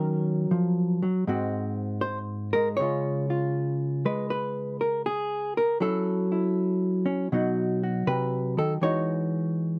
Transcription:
Already playing: D#3 F#3 C#4 A#4
0.51 F3
1.03 F#3
1.27 G#2 G#3 C4 F#4
2.01 C5
2.53 G#3 A#4
2.77 C#3 G#3 C#5
2.81 C#4 F4
3.30 F4
4.05 G#3 B4
4.30 B4
4.81 A#4
5.06 G#4
5.57 A#4
5.80 F#3 C#4 E4 A4
6.32 E4
7.06 C#4
7.32 B2 F#3 D#4 F#4
7.83 F#4
8.07 C3 B4
8.57 D#3 A4
8.81 E3 G#3 D#4 F#4 C#5

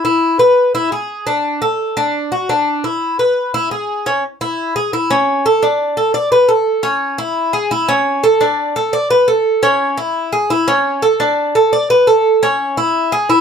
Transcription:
0.05 E4
0.39 B4
0.75 E4
0.92 G#4
1.27 D4
1.62 A4
1.97 D4
2.32 F#4
2.49 D4
2.84 E4
3.19 B4
3.54 E4
3.71 G#4
4.06 C#4
4.41 E4
4.76 G#4
4.93 E4
5.10 C#4
5.46 A4
5.63 D4
5.97 A4
6.14 D5
6.32 B4
6.49 A4
6.83 C#4
7.18 E4
7.53 G#4
7.71 E4
7.89 C#4
8.23 A4
8.41 D4
8.76 A4
8.93 D5
9.10 B4
9.28 A4
9.63 C#4
9.97 E4
10.33 G#4
10.50 E4
10.68 C#4
11.02 A4
11.20 D4
11.55 A4
11.73 D5
11.90 B4
12.07 A4
12.43 C#4
12.77 E4
13.12 G#4
13.30 E4

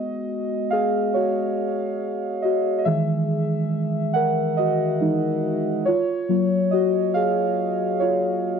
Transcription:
Already playing: G#3 B3 F#4 D#5
0.70 G#4 F5
1.14 F#4 C#5
2.42 F#4 D#5
2.79 D#5
2.85 D#3 E3 G#3 G#4 E5
4.13 A#4 F#5
4.57 F#4 D#5
5.01 E3 G#3 D#4
5.85 F4 C#5
6.29 F#3 A#3 F4
6.71 F#4 D#5
7.14 G#4 F5
8.00 F4 C#5

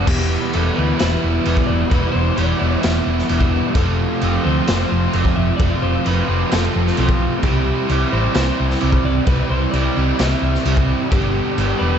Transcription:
0.06 E1 E2 B2 E3 G3 B3 E4 G4, kick, crash
0.52 E1 E3 G3 B3 E4 A4, crash
0.75 D2 B2 E3 G3 B3 E4 B4
0.79 E2
0.98 E1 E2 B2 E3 G3 B3 E4 B4, snare, crash
1.22 E1 G3 B3 E4
1.44 E1 E3 G3 B3 E4, crash
1.57 kick
1.67 E1 D5
1.90 E1 E2 B2 E3 G3 B3 E4 B4, kick, crash
2.12 E1 C5
2.36 E1 E3 G3 B3 E4 D5, crash
2.59 E1 B2 E3 G3 B3 E4
2.63 E2
2.82 E1 E2 B2 E3 G3 B3 E4 E5, snare, crash
3.05 E1 G3 B3 E4
3.19 snare
3.28 E1 E3 G3 B3 E4, crash
3.41 kick
3.74 F1 F2 C3 F3 A3 C4 F4 A4, kick, crash
4.21 F1 F3 A3 C4 F4, crash
4.44 D2 F2 C3 F3 A3 C4 F4 C5
4.66 F1 F2 C3 F3 A3 C4 F4 C5, snare, crash
4.89 F1 A3 C4 F4
5.12 F1 F3 A3 C4 F4, crash
5.25 kick
5.36 F1 E5
5.57 F1 F2 C3 F3 A3 C4 D5, kick, crash
5.61 C3 F3 F4
5.82 F1 C5
6.04 F1 F3 A3 C4 F4 B4, crash
6.27 F1 F2 C3 F3 A3 C4 F4
6.49 F1 F2 C3 F3 A3 C4 F4 A4, snare, crash
6.54 F3
6.73 F1 A3 C4 F4
6.87 snare
6.95 B1 F3 A3 C4 F4, crash
7.09 kick
7.42 C2 C3 E3 G3 C4 E4 G4, kick, crash
7.87 C2 C3 E3 G3 C4 E4, crash
8.11 A1 C3 G3 C4 E4 C5
8.34 C2 C3 E3 G3 C4 E4 C5, snare, crash
8.57 C2 G3 C4 E4
8.71 snare
8.81 C2 C3 E3 G3 C4 E4, crash
8.92 kick
9.04 C2 D5
9.26 C2 C3 E3 G3 C4 E4 B4, kick, crash
9.50 C2 C5
9.71 C2 C3 E3 G3 C4 D5, crash
9.75 E4
9.96 C2 C3 G3 C4 E4
10.19 C2 C3 E3 G3 C4 E4 E5, snare, crash
10.42 C2 G3 C4 E4
10.55 snare
10.64 C2 C3 E3 G3 C4 E4, crash
10.77 kick
11.10 G1 G2 D3 G3 B3 D4 G4, kick, crash
11.14 G4
11.57 G1 D3 G3 B3 D4 G4, crash
11.79 E1 G2 D3 G3 B3 D4 B4

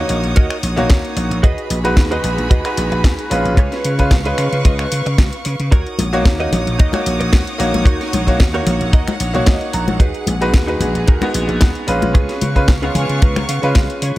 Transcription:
Already playing: A#3 D#4 F#4 A#4 C#5 D#5 F#5 D#6
0.09 A#1, open hi-hat
0.24 A#1, closed hi-hat
0.36 D#2 F#4 A#4 C#5 D#5, kick, closed hi-hat
0.50 finger snap, closed hi-hat
0.63 A#1, open hi-hat
0.76 A#1 A#3 D#4 F#4 C#5, muted clean electric guitar stroke, closed hi-hat
0.90 D#2, muted clean electric guitar stroke, kick, snare, closed hi-hat
1.05 closed hi-hat
1.16 A#1, muted clean electric guitar stroke, open hi-hat
1.31 A#1, closed hi-hat
1.43 D#2 F#4 G#4 B4 D#5 B5, kick, closed hi-hat
1.58 closed hi-hat
1.70 A#1, open hi-hat
1.84 G#3 D#4 F#4 B4, closed hi-hat
1.97 D#2, kick, snare, closed hi-hat
2.11 G#3 D#4 F#4 G#4 B4 D#5, closed hi-hat
2.24 A#1, open hi-hat
2.38 A#1, closed hi-hat
2.50 D#2 F#4 G#4 B4 D#5, kick, closed hi-hat
2.64 G#3 D#4 F#4 B4, finger snap, closed hi-hat
2.77 A#1, open hi-hat
2.91 A#1, muted clean electric guitar stroke, closed hi-hat
3.04 D#2, muted clean electric guitar stroke, kick, snare, closed hi-hat
3.19 closed hi-hat
3.30 A#1 G#3 C#4 F4 B4, muted clean electric guitar stroke, open hi-hat
3.45 A#1, closed hi-hat
3.57 C#2 F4 G#4 B4 C#5 F5 C#6, kick, closed hi-hat
3.72 snare, closed hi-hat
3.84 C#3, open hi-hat
3.98 G#3 C#4 F4 B4, kick, closed hi-hat
4.11 C#2, kick, snare, closed hi-hat
4.24 G#3 C#4 F4 G#4 B4 D#5, closed hi-hat
4.38 C#3, finger snap, open hi-hat
4.53 C#3, closed hi-hat
4.65 C#2 F4 G#4 B4 D#5, kick, closed hi-hat
4.79 finger snap, closed hi-hat
4.92 C#3, open hi-hat
5.06 C#3, muted clean electric guitar stroke, closed hi-hat
5.18 C#2, muted clean electric guitar stroke, kick, snare, closed hi-hat
5.33 closed hi-hat
5.45 C#3, muted clean electric guitar stroke, open hi-hat
5.60 C#3, closed hi-hat
5.71 D#2 D#4 F#4 A#4 C#5 F#5 D#6, kick, closed hi-hat
5.87 closed hi-hat
5.99 A#1, open hi-hat, high conga
6.13 A#3 D#4 F#4 C#5, closed hi-hat
6.25 D#2, kick, snare, closed hi-hat
6.39 A#3 D#4 F#4 A#4 C#5 D#5, closed hi-hat
6.52 A#1, open hi-hat, high conga, low conga
6.67 A#1, closed hi-hat
6.79 D#2 D#4 F#4 A#4 D#5, kick, closed hi-hat
6.92 A#3 D#4 F#4 C#5, finger snap, closed hi-hat, high conga
7.06 A#1, open hi-hat
7.20 A#1, muted clean electric guitar stroke, closed hi-hat
7.32 D#2, muted clean electric guitar stroke, kick, snare, closed hi-hat, high conga
7.47 closed hi-hat
7.58 A#1 A#3 D#4 F#4 C#5, muted clean electric guitar stroke, open hi-hat
7.74 A#1, closed hi-hat, high conga
7.85 D#2 D#4 F#4 A#4 C#5, kick, closed hi-hat
8.01 snare, closed hi-hat
8.13 A#1, open hi-hat, high conga
8.27 A#3 D#4 F#4 C#5, kick, closed hi-hat
8.40 D#2, kick, snare, closed hi-hat
8.53 A#3 D#4 F#4 A#4 C#5, closed hi-hat
8.67 A#1, open hi-hat, high conga, low conga
8.81 A#1, closed hi-hat
8.93 D#2 D#4 F#4 A#4 D#5, kick, closed hi-hat
9.08 finger snap, closed hi-hat, high conga
9.20 A#1 C#5, open hi-hat
9.33 A#1 A#3 D#4 F#4 C#5, muted clean electric guitar stroke, closed hi-hat
9.46 D#2 D#5, muted clean electric guitar stroke, kick, snare, closed hi-hat, high conga
9.61 closed hi-hat
9.73 A#1 A#5, muted clean electric guitar stroke, open hi-hat
9.88 A#1, closed hi-hat, high conga
10.00 D#2 D#4 F#4 G#4 B4, kick, closed hi-hat
10.14 closed hi-hat
10.27 A#1, open hi-hat, high conga
10.41 G#3 D#4 F#4 B4, closed hi-hat
10.54 D#2, kick, snare, closed hi-hat
10.67 G#3 D#4 F#4 G#4 B4, closed hi-hat
10.80 A#1, open hi-hat, high conga, low conga
10.95 A#1, closed hi-hat
11.07 D#2 D#4 F#4 G#4 A#4, kick, closed hi-hat
11.21 G#3 B3 D#4 F#4, finger snap, closed hi-hat, high conga
11.34 A#1, open hi-hat
11.48 A#1, muted clean electric guitar stroke, closed hi-hat
11.61 D#2, muted clean electric guitar stroke, kick, snare, closed hi-hat, high conga
11.75 closed hi-hat
11.87 A#1 G#3 C#4 F4 B4, muted clean electric guitar stroke, open hi-hat
12.02 A#1, closed hi-hat, high conga
12.14 C#2 B3 C#4 F4 G#4 B4 F5 C#6, kick, closed hi-hat
12.29 snare, closed hi-hat
12.41 C#3, open hi-hat, high conga
12.55 G#3 C#4 F4 B4, kick, closed hi-hat
12.68 C#2, kick, snare, closed hi-hat
12.82 G#3 B3 C#4 F4 G#4 A#4, closed hi-hat
12.95 C#3 G#5, open hi-hat, high conga, low conga
13.09 C#3, closed hi-hat
13.21 C#2 C#4 F4 G#4 B4 A#5, kick, closed hi-hat
13.36 finger snap, closed hi-hat, high conga
13.49 C#3 F5, open hi-hat
13.62 C#3 G#3 C#4 F4 B4, muted clean electric guitar stroke, closed hi-hat
13.75 C#2 F5, muted clean electric guitar stroke, kick, snare, closed hi-hat, high conga
13.90 closed hi-hat
14.02 C#3 C#5, muted clean electric guitar stroke, open hi-hat

